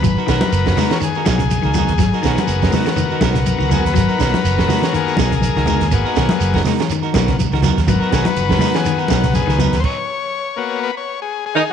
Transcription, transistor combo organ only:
Already playing: B4
0.29 B3 F#4 A#4
0.92 C#5
1.03 G#4
1.28 G#4
2.24 B3 F#4 A#4
3.72 G#4
3.82 A#4
3.86 B4
3.95 B3 F#4 A#4
4.84 C#5
4.95 A#3 B3 F#4 G#4
5.19 G#4
5.92 A#3 B3 F#4
7.15 A#3 B3 F#4
7.88 B3 F#4 A#4
8.14 G#4
8.23 A#4
8.27 B4
8.75 G#4
9.00 F#4
9.35 G#4
9.80 C5
9.85 C#5
10.56 A#3 B3 F#4
10.83 B4
10.97 C#5
11.22 G#4
11.46 G#4
11.57 G#4

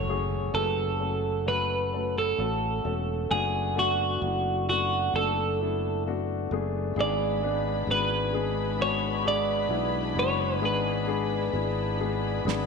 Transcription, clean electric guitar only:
Already playing: C#5
0.55 A4
1.48 B4
2.18 A4
3.31 G#4
3.79 F#4
4.69 F#4
5.16 A4
7.01 D5
7.91 B4
8.82 C#5
9.28 D5
10.19 C#5
10.65 B4

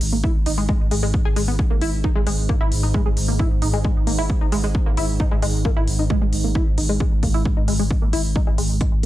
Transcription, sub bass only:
0.01 G#1
0.13 G#1
0.35 G#1
0.46 G#1
0.58 G#1
0.80 G#1
0.91 G#1
1.03 G#1
1.25 G#1
1.36 G#1
1.48 G#1
1.70 G#1
1.82 G#1
1.93 G#1
2.16 G#1
2.27 G#1
2.38 G#1
2.61 G#1
2.72 G#1
2.83 G#1
3.06 G#1
3.17 G#1
3.28 G#1
3.51 G#1
3.62 G#1
3.74 G#1
3.96 G#1
4.07 G#1
4.19 G#1
4.41 G#1
4.52 G#1
4.64 G#1
4.86 G#1
4.97 G#1
5.09 G#1
5.31 G#1
5.42 G#1
5.54 G#1
5.77 G#1
5.88 G#1
5.99 G#1
6.22 G#1
6.33 G#1
6.44 G#1
6.67 G#1
6.78 G#1
6.89 G#1
7.12 G#1
7.23 G#1
7.34 G#1
7.57 G#1
7.68 G#1
7.80 G#1
8.02 G#1
8.13 G#1
8.25 G#1
8.47 G#1
8.58 G#1
8.70 G#1
8.92 G#1

